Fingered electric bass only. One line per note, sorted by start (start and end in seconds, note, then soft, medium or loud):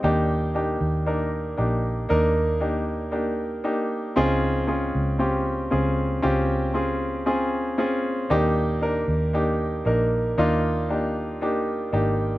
0.04 0.77 D#2 medium
0.81 1.54 D#2 medium
1.59 2.07 A#1 medium
2.11 3.66 D#2 medium
3.66 4.14 A#1 medium
4.17 4.91 C#2 medium
4.95 5.68 C#2 medium
5.73 6.20 C#2 medium
6.25 8.27 C#2 medium
8.31 9.04 D#2 medium
9.08 9.82 D#2 medium
9.86 10.34 A#1 medium
10.38 11.89 D#2 medium
11.93 12.38 G#1 medium